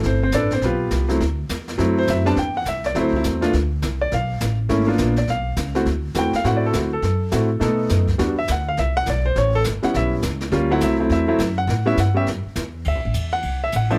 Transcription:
Already playing: grand piano A3 E4 A4
0.03 upright bass G1, grand piano C4 C5, brush sweep, snare
0.23 grand piano C4 C5
0.32 upright bass A1, grand piano D4 A4 B4 D5, snare, hi-hat pedal
0.51 grand piano C4 C5, snare
0.62 upright bass B1, grand piano B3 F4 G4 B4, brush sweep, snare
0.91 upright bass C2, snare, hi-hat pedal
1.08 grand piano F#3 A3 C4 E4, snare
1.20 upright bass D2, brush sweep, snare
1.49 upright bass E2, snare, hi-hat pedal
1.68 snare
1.78 upright bass F#2, grand piano F#3 A3 C4 E4, brush sweep, snare
1.98 grand piano C5
2.07 upright bass F#2, grand piano E5, snare, hi-hat pedal
2.25 grand piano G3 B3 C4 D4 A5, snare
2.36 upright bass E2, grand piano G5, brush sweep, snare
2.57 grand piano F#5
2.65 upright bass C2, grand piano E5, snare, hi-hat pedal
2.84 grand piano D5, snare
2.95 upright bass D2, grand piano F#3 A3 C4 E4, brush sweep, snare
2.99 grand piano C5
3.13 grand piano E4, kick
3.24 upright bass E2, snare, hi-hat pedal
3.41 grand piano A3 B3 D4 F4, snare
3.53 upright bass D2, brush sweep, snare
3.82 upright bass C2, snare, hi-hat pedal
4.01 grand piano D5
4.11 upright bass B1, grand piano F5, brush sweep, snare
4.40 upright bass A1, snare, hi-hat pedal
4.69 upright bass G#1, grand piano A3 A#3 C#4 E4, brush sweep, snare
4.87 grand piano A#3 B3 D4 F4
4.98 upright bass A#1, snare, hi-hat pedal
5.16 grand piano D5, snare
5.27 upright bass B1, grand piano F5, brush sweep, snare
5.56 upright bass C#2, snare, hi-hat pedal
5.75 grand piano A3 C4 E4 F#4, snare
5.85 upright bass D2, brush sweep, snare
6.14 upright bass E2, grand piano A3 C4 E4 F#4, snare, hi-hat pedal
6.19 grand piano G5
6.33 grand piano F5, muted upright bass stroke, snare
6.44 upright bass A2, grand piano A3 C4 E4 F#4 F#5, brush sweep, snare
6.57 grand piano D5
6.66 grand piano A4
6.73 upright bass D2, grand piano F#4, snare, hi-hat pedal
6.93 grand piano A4
7.02 upright bass F#2, brush sweep, snare
7.32 upright bass A2, grand piano A3 C4 E4 F#4, snare, hi-hat pedal
7.60 upright bass B2, grand piano A3 B3 D#4 A4, brush sweep, snare
7.89 upright bass F#2, snare, hi-hat pedal
8.08 kick, snare
8.18 upright bass E2, grand piano G3 B3 D4 F#4, brush sweep, snare
8.39 grand piano E5
8.48 upright bass D2, snare, hi-hat pedal
8.52 grand piano F#5
8.69 grand piano F5
8.77 upright bass C2, grand piano E5, brush sweep, snare
8.97 grand piano F#5
9.06 upright bass B1, grand piano D5, snare, hi-hat pedal
9.26 grand piano C5
9.36 upright bass A1, grand piano C#5, brush sweep, snare
9.55 grand piano A4
9.64 upright bass G1, snare, hi-hat pedal
9.82 grand piano G3 B3 C#4 E4 F#5, muted upright bass stroke, snare
9.94 upright bass B1, grand piano E5, brush sweep, snare
10.22 upright bass C#2, snare, hi-hat pedal
10.41 snare
10.52 upright bass D2, grand piano G3 A#3 C#4 F4, brush sweep, snare
10.71 grand piano F#3 A3 C4 E4 F#5
10.81 upright bass C2, grand piano E5, snare, hi-hat pedal
11.00 grand piano F#3 A3 C4 E4
11.10 upright bass E2, grand piano E5, brush sweep, snare
11.28 grand piano F#3 A3 C4 E4
11.39 upright bass F#2, snare, hi-hat pedal
11.58 grand piano F#5
11.67 upright bass A2, brush sweep, snare
11.86 grand piano G3 B3 C#4 E4 E5
11.97 upright bass G2, grand piano F#5, snare, hi-hat pedal
12.14 grand piano G3 B3 C#4 G4 E5
12.26 upright bass F#2, brush sweep, snare
12.45 muted upright bass stroke
12.55 upright bass E2, snare, hi-hat pedal
12.85 upright bass D2, grand piano E5, ride
12.95 upright bass C2
13.05 upright bass A1
13.14 upright bass E2, hi-hat pedal, ride
13.31 grand piano F#5, ride
13.43 upright bass C2, ride
13.64 grand piano E5
13.72 upright bass A1, hi-hat pedal, ride
13.76 grand piano F#5
13.90 grand piano F3 A3 B3 D4 E5, ride

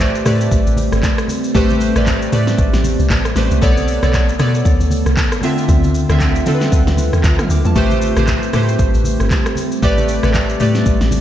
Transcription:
Already playing: log drum bass A1, ambient pad G3 A3 C4, synth keys A3 G4 B4 C5 D5
0.00 kick, clap, low conga, shaker
0.15 shaker
0.25 log drum bass A2, synth keys A3 G4 B4 D5, cross-stick, open hi-hat, high conga, shaker
0.41 shaker
0.51 log drum bass A1, kick, shaker
0.66 log drum bass A1, shaker
0.77 open hi-hat, high conga, shaker
0.92 log drum bass G1, cross-stick, shaker
1.03 kick, clap, high conga, low conga, shaker
1.18 cross-stick, shaker
1.28 open hi-hat, high conga, shaker
1.44 shaker
1.54 log drum bass A1, synth keys A3 G4 B4 C5, kick, low conga, shaker
1.70 high conga, shaker
1.81 open hi-hat, shaker
1.96 log drum bass A1, synth keys A3 G4 B4 D5, cross-stick, high conga, shaker
2.06 kick, clap, low conga, shaker
2.22 shaker
2.32 log drum bass A2, synth keys A3 G4 B4 D5, open hi-hat, high conga, shaker
2.47 snare, shaker
2.58 log drum bass A1, kick, shaker
2.73 log drum bass A1, snare, shaker
2.84 open hi-hat, high conga, shaker
2.99 log drum bass C2, shaker
3.10 log drum bass A1, kick, clap, high conga, low conga, shaker
3.25 cross-stick, shaker
3.35 log drum bass A1, synth keys A3 G4 B4 C5, snare, open hi-hat, high conga, shaker
3.51 log drum bass C2, shaker
3.62 log drum bass B1, ambient pad D3 A3 B3, synth keys B3 A4 C#5 D5, kick, low conga, shaker
3.77 high conga, shaker
3.88 open hi-hat, shaker
4.02 log drum bass B1, synth keys B3 A4 C#5 D5, cross-stick, high conga, shaker
4.13 kick, clap, low conga, shaker
4.29 shaker
4.39 log drum bass B2, synth keys B3 A4 C#5 D5, cross-stick, open hi-hat, high conga, shaker
4.55 shaker
4.65 log drum bass D2, kick, shaker
4.80 log drum bass D2, shaker
4.90 open hi-hat, high conga, shaker
5.06 log drum bass C2, cross-stick, shaker
5.17 kick, clap, high conga, low conga, shaker
5.32 cross-stick, shaker
5.42 synth keys D3 C4 F4 E5, ambient pad C4 F4 E5, open hi-hat, high conga, shaker
5.58 shaker
5.68 log drum bass D2, kick, low conga, shaker
5.84 high conga, shaker
5.95 open hi-hat, shaker
6.09 log drum bass D2, synth keys D3 C4 F4 E5, cross-stick, high conga, shaker
6.20 kick, clap, low conga, shaker
6.36 shaker
6.46 synth keys D3 C4 F4 A4, log drum bass D3, open hi-hat, high conga, shaker
6.55 synth keys B4
6.61 snare, shaker
6.72 log drum bass D2, kick, shaker
6.87 log drum bass D2, snare, shaker
6.97 open hi-hat, high conga, shaker
7.13 log drum bass E2, cross-stick, shaker
7.24 log drum bass D2, kick, clap, high conga, low conga, shaker
7.39 synth keys F6, cross-stick, mid tom, shaker
7.49 log drum bass D2, synth keys D6, open hi-hat, high conga, shaker
7.65 log drum bass E2, synth keys A5, mid tom, shaker
7.75 log drum bass A1, ambient pad G3 A3, synth keys A3 G4 B4 C5, kick, low conga, shaker
7.91 high conga, shaker
8.02 open hi-hat, shaker
8.17 log drum bass A1, synth keys A3 G4 B4 C5, cross-stick, high conga, shaker
8.27 kick, clap, low conga, shaker
8.43 shaker
8.53 log drum bass A2, synth keys A3 G4 B4 C5, cross-stick, open hi-hat, high conga, shaker
8.68 shaker
8.79 log drum bass A1, kick, shaker
8.94 log drum bass A1, shaker
9.04 open hi-hat, high conga, shaker
9.20 log drum bass G1, cross-stick, shaker
9.31 kick, clap, high conga, low conga, shaker
9.46 cross-stick, shaker
9.55 open hi-hat, high conga, shaker
9.72 shaker
9.82 log drum bass A1, synth keys A3 G4 B4 D5, kick, low conga, shaker
9.98 high conga, shaker
10.08 open hi-hat, shaker
10.23 log drum bass A1, synth keys A3 G4 B4 D5, cross-stick, high conga, shaker
10.34 kick, clap, low conga, shaker
10.49 shaker
10.60 log drum bass A2, synth keys A3 G4 B4 D5, open hi-hat, high conga, shaker
10.75 snare, shaker
10.86 log drum bass A1, kick, shaker
11.01 log drum bass A1, snare, shaker
11.11 open hi-hat, high conga, shaker

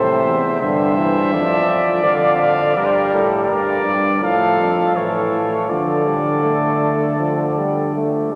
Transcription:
Already playing: euphonium A2, trombone C3, flugelhorn C5, trumpet E5
0.25 euphonium E2
0.60 euphonium G2, trombone D3, flugelhorn C5, trumpet E5
0.97 trombone E3
1.32 euphonium F2, trombone F3, flugelhorn D5
2.04 euphonium F2, trombone D3, trumpet F5
2.42 trumpet F5
2.76 euphonium G2, trombone G3, trumpet A#4, flugelhorn D5
2.85 trumpet C5
2.92 trumpet A#4
3.12 euphonium A2, flugelhorn A4
3.49 euphonium G2, flugelhorn A#4, trumpet D5
3.85 euphonium G2
4.22 euphonium A2, trombone F3, flugelhorn A4, trumpet F5
4.59 euphonium F2
4.96 euphonium A2, trombone E3, flugelhorn A4, trumpet C#5
5.32 euphonium A2
5.69 euphonium D3, trombone F3, flugelhorn A4, trumpet D5
6.06 trombone G3
6.44 trombone A3
7.19 trombone F3
7.58 trombone G3
7.95 trombone A3

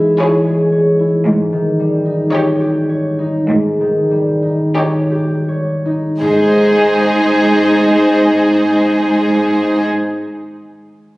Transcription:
Already playing: harp G#2 E3 G#3 E4 G#4 C#5
0.20 viola section E4, violin section G#4 C#5, harp C#5
0.47 harp G#4
0.72 harp C#5
0.99 harp E4
1.26 cello section G#2, harp G#2
1.52 harp D#3
1.80 harp G3
2.05 harp D#4
2.32 viola section D#4, violin section G4 C#5, harp C#5
2.60 harp G4
2.89 harp C#5
3.19 harp D#4
3.49 cello section G#2, harp G#2
3.81 harp D#3
4.11 harp G3
4.43 harp D#4
4.75 viola section D#4, violin section G4 C#5, harp C#5
5.11 harp G4
5.49 harp C#5
5.86 harp D#4
6.21 harp G#2, cello section G#2, viola section D#4, violin section G#4 C5
6.28 harp G#3
6.34 harp D#4
6.41 harp C5
6.48 harp D#5

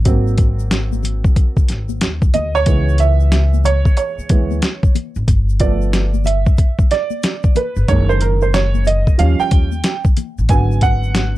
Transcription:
0.05 upright bass G#1, upright piano F#3 A#3 C4, kick, closed hi-hat, shaker
0.27 shaker
0.38 kick, closed hi-hat, shaker
0.59 shaker
0.71 snare, closed hi-hat, high conga, shaker
0.93 high conga, shaker
1.03 closed hi-hat, high conga, low conga, shaker
1.24 kick, shaker
1.36 kick, closed hi-hat, shaker
1.57 kick, shaker
1.69 upright bass G#1, snare, closed hi-hat, shaker
1.89 high conga, shaker
2.01 upright bass D#2, snare, closed hi-hat, shaker
2.22 kick, shaker
2.34 upright bass D2, upright piano D#5, closed hi-hat, high conga, low conga, shaker
2.55 upright piano C#5, shaker
2.66 upright bass C#2, upright piano E3 G#3 B3, kick, closed hi-hat, shaker
2.89 shaker
2.98 upright piano E5, closed hi-hat, shaker
3.20 shaker
3.32 snare, closed hi-hat, high conga, shaker
3.54 high conga, shaker
3.64 upright piano C#5, closed hi-hat, high conga, low conga, shaker
3.85 kick, shaker
3.97 upright piano C#5, closed hi-hat, shaker
4.18 muted upright bass stroke, shaker
4.29 upright bass D2, upright piano E3 G#3 B3, kick, closed hi-hat, shaker
4.51 high conga, shaker
4.62 snare, closed hi-hat, shaker
4.83 kick, shaker
4.95 closed hi-hat, high conga, low conga, shaker
5.16 upright bass G#1, shaker
5.28 upright bass G1, kick, closed hi-hat, shaker
5.49 shaker
5.60 upright piano F3 A3 B3 D5, kick, closed hi-hat, shaker
5.81 shaker
5.93 snare, closed hi-hat, high conga, shaker
6.14 high conga, shaker
6.24 upright piano E5, closed hi-hat, high conga, low conga, shaker
6.46 kick, shaker
6.58 kick, closed hi-hat, shaker
6.79 kick, shaker
6.91 upright piano D5, snare, closed hi-hat, shaker
7.10 high conga, shaker
7.23 snare, closed hi-hat, shaker
7.43 kick, shaker
7.55 upright piano B4, closed hi-hat, high conga, low conga, shaker
7.76 upright bass G1, shaker
7.88 upright bass F#1, upright piano D#3 G#3 A#3 C#5, kick, closed hi-hat, shaker
8.09 upright piano C5, shaker
8.21 upright piano A#4, closed hi-hat, shaker
8.41 upright piano C5, shaker
8.54 upright piano C#5, snare, closed hi-hat, high conga, shaker
8.75 high conga, shaker
8.85 upright piano D#5, closed hi-hat, high conga, low conga, shaker
9.07 kick, shaker
9.18 upright bass D#2, upright piano F3 G3 C#4 F5, closed hi-hat, shaker
9.40 upright piano G5, muted upright bass stroke, shaker
9.51 upright bass D#2, kick, closed hi-hat, shaker
9.72 high conga, shaker
9.84 snare, closed hi-hat, shaker
10.05 kick, shaker
10.17 closed hi-hat, high conga, low conga, shaker
10.38 upright bass A1, shaker
10.49 upright bass G#1, upright piano D3 F#3 B3 G#5, kick, closed hi-hat, shaker
10.72 shaker
10.81 upright piano F#5, kick, closed hi-hat, shaker
11.03 shaker
11.15 snare, closed hi-hat, high conga, shaker

